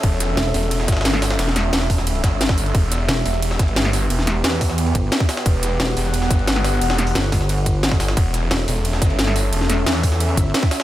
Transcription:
<<
  \new Staff \with { instrumentName = "Analog synth pad" } { \time 4/4 \key e \dorian \tempo 4 = 177 << { e''1~ | e''1~ | e''1~ | e''1 |
fis''1~ | fis''1 | e''1~ | e''1 | } \\ { <cis' a'>1~ | <cis' a'>1 | <b g'>1~ | <b g'>1~ |
<b g'>1~ | <b g'>1 | <cis' a'>1~ | <cis' a'>1 | } >> }
  \new Staff \with { instrumentName = "Wobble bass" } { \clef bass \time 4/4 \key e \dorian r4 e,,8 r2 r8 | r1 | r4 e,,8 r2 r8 | r2 r8 g,,8 r4 |
r4 e,,8 r2 r8 | r4 g,,2~ g,,8 g,,8 | r4 e,,8 r2 r8 | r2 r8 g,,8 r4 | }
  \new Staff \with { instrumentName = "Detuned saw bass" } { \clef bass \time 4/4 \key e \dorian e,,4 r8 e,,4 g,,4. | e,,4 e,,4. g,,4. | e,,4 r8 e,,4 g,,4. | e,,4 e,4. r4. |
e,,4 r8 e,,4 g,,4. | e,,4 r2. | e,,4 r8 e,,4 g,,4. | e,,4 e,4. r4. | }
  \new DrumStaff \with { instrumentName = "Drums" } \drummode { \time 4/4 <hh bd cymr>8 <hh cymr sn>8 <hh cymr sn>8 <hho cymr>16 cymr16 <hh cymr>16 sn16 <hh bd cymr sn>32 <cymr sn>32 <cymr sn>32 <cymr sn>32 <hh cymr sn>16 sn16 <hho cymr sn>16 <cymr sn>16 | <hh cymr sn>16 sn16 <hh cymr sn>8 <hh cymr sn>16 sn16 <hho bd>16 sn16 <hh cymr>16 cymr16 <hh bd cymr sn>8 <hh cymr sn>16 <bd cymr sn>16 hho16 cymr16 | <hh bd cymr>8 <hh cymr sn>8 <hh cymr sn>8 <hho cymr>16 cymr16 <hh cymr>16 sn16 <hh bd cymr sn>16 cymr16 <hh cymr sn>16 sn16 <hho cymr sn>8 | <hh cymr>16 sn16 <hh cymr sn>8 <hh cymr sn>16 sn16 <hho bd>16 sn16 <hh cymr>16 cymr16 <hh bd cymr>8 <hh cymr sn>16 <bd sn>16 <hho cymr sn>16 <cymr sn>16 |
<hh bd cymr>8 <hh cymr sn>8 <hh cymr sn>8 <hho cymr>16 cymr16 <hh cymr>16 sn16 <hh bd cymr sn>16 cymr16 <hh cymr sn>16 sn16 <hho cymr sn>16 sn16 | <hh hho cymr>16 <cymr sn>16 <hh sn>16 hho16 <hh cymr sn>16 sn16 <hho bd sn>16 sn16 <hh cymr>16 cymr16 <hh bd cymr>8 <hh cymr sn>16 <bd cymr sn>16 <hho cymr sn>16 <cymr sn>16 | <hh bd cymr>8 <hh cymr sn>8 <hh cymr sn>8 <hho cymr>16 cymr16 <hh cymr>16 sn16 <hh bd cymr sn>16 cymr16 <hh cymr sn>16 sn16 <hho cymr sn>8 | <hh cymr>16 sn16 <hh cymr sn>8 <hh cymr sn>16 sn16 <hho bd>16 sn16 <hh cymr>16 cymr16 <hh bd cymr>8 <hh cymr sn>16 <bd sn>16 <hho cymr sn>16 <cymr sn>16 | }
>>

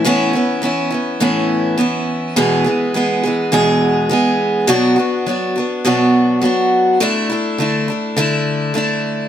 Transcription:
\new Staff \with { instrumentName = "Steel-string acoustic guitar" } { \time 4/4 \key a \major \tempo 4 = 103 <a, e b cis' e'>8 <b cis' e'>8 <e b cis' e'>8 <b cis' e'>8 <a, e b cis' e'>4 <e b cis' e'>4 | <e, b, e gis b gis'>8 <e gis b gis'>8 <e gis b gis'>8 <e gis b gis'>8 <e, b, e gis b gis'>4 <e gis b gis'>4 | <b, fis b d' fis'>8 <b d' fis'>8 <fis b d' fis'>8 <b d' fis'>8 <b, fis b d' fis'>4 <fis b d' fis'>4 | <d a d' e'>8 <a d' e'>8 <d a d' e'>8 <a d' e'>8 <d a d' e'>4 <d a d' e'>4 | }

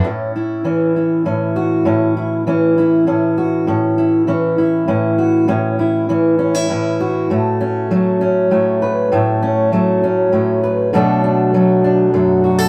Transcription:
\new Staff \with { instrumentName = "Steel-string acoustic guitar" } { \time 6/8 \key a \major \tempo 4. = 66 << { cis'8 e'8 cis'8 e'8 cis'8 fis'8 | cis'8 e'8 cis'8 e'8 cis'8 fis'8 | cis'8 e'8 cis'8 e'8 cis'8 fis'8 | cis'8 e'8 cis'8 cis'16 e'16 cis'8 fis'8 |
a8 cis'8 a8 cis'8 a8 b'8 | a8 cis'8 a8 cis'8 a8 b'8 | <fis a d' a'>8 d'8 a8 d'8 a8 fis'16 a'16 | } \\ { a,4 e4 a,4 | a,4 e4 a,4 | a,4 e4 a,4 | a,4 e4 a,4 |
a,4 fis4 a,4 | a,4 fis4 a,4 | b,4 fis4 fis,4 | } >> }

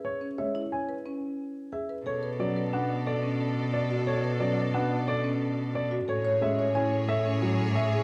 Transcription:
<<
  \new Staff \with { instrumentName = "Grand piano" } { \time 6/4 \key b \dorian \tempo 4 = 179 cis''8 r8 e''8 r8 gis''8 r2 r8 e''8 r8 | cis''8 r8 d''8 r8 fis''8 r8 d''8 r4. d''8 r8 | cis''8 r8 d''8 r8 fis''8 r8 d''8 r4. d''8 r8 | cis''8 r8 e''8 r8 gis''8 r8 e''8 r4. e''8 r8 | }
  \new Staff \with { instrumentName = "String section" } { \time 6/4 \key b \dorian r1. | <a' d''>1.~ | <a' d''>1~ <a' d''>4. r8 | <gis' cis''>1. | }
  \new Staff \with { instrumentName = "Marimba" } { \time 6/4 \key b \dorian r8 cis'8 cis''8 e'8 r8 b'8 cis'8 r4. gis'8 b'8 | a'8 b'8 cis'8 b'8 d'8 r8 a'8 cis'8 r4. fis'8 | a'8 b'8 cis'8 b'8 d'8 r8 a'8 cis'8 r4. fis'8 | a'8 cis''8 cis'8 cis''8 e'8 r8 a'8 cis'8 r4. gis'8 | }
  \new Staff \with { instrumentName = "Grand piano" } { \clef bass \time 6/4 \key b \dorian r4 gis8 r8 cis'8 r2. r8 | r4 fis8 r8 b8 r2. r8 | r4 fis8 r8 b8 r2. r8 | r4 gis8 r8 cis'8 r4. fis8 r4. | }
  \new Staff \with { instrumentName = "Cello" } { \clef bass \time 6/4 \key b \dorian r1. | b,1.~ | b,1. | a,1. | }
>>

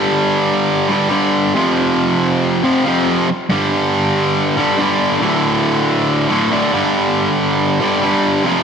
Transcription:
\new Staff \with { instrumentName = "Distorted electric guitar" } { \clef bass \time 4/4 \key g \major \tempo 4 = 139 <g, d g>2 <g, d g>8 <g, d g>4 <f, c f>8~ | <f, c f>2 <f, c f>8 <f, c f>4 r8 | <g, d g>2~ <g, d g>8 <g, d g>8 <g, d g>4 | <d, a, d>2~ <d, a, d>8 <d, a, d>8 <d, a, d>8 <g, d g>8~ |
<g, d g>2 <g, d g>8 <g, d g>4 <f, c f>8 | }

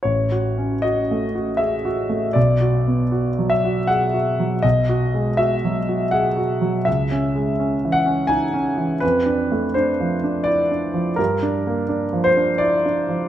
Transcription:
\new Staff \with { instrumentName = "Grand piano" } { \time 3/4 \key b \mixolydian \tempo 4 = 82 << { cis''4 dis''4 e''4 | d''4. e''8 fis''4 | dis''4 e''4 fis''4 | e''4. fis''8 gis''4 |
b'4 c''4 d''4 | bes'4. c''8 d''4 | } \\ { \tuplet 3/2 { a,,8 fis'8 cis'8 fis'8 a8 fis'8 gis'8 fis'8 a8 } | \tuplet 3/2 { b,,8 fis'8 b8 fis'8 fis8 fis'8 gis'8 fis'8 fis8 } | \tuplet 3/2 { b,,8 fis'8 gis8 fis'8 fis8 fis'8 gis'8 fis'8 fis8 } | \tuplet 3/2 { cis,8 cis'8 gis8 cis'8 e8 cis'8 dis'8 cis'8 e8 } |
\tuplet 3/2 { f,8 d'8 a8 d'8 f8 d'8 e'8 d'8 f8 } | \tuplet 3/2 { g,8 d'8 bes8 d'8 f8 d'8 e'8 d'8 f8 } | } >> }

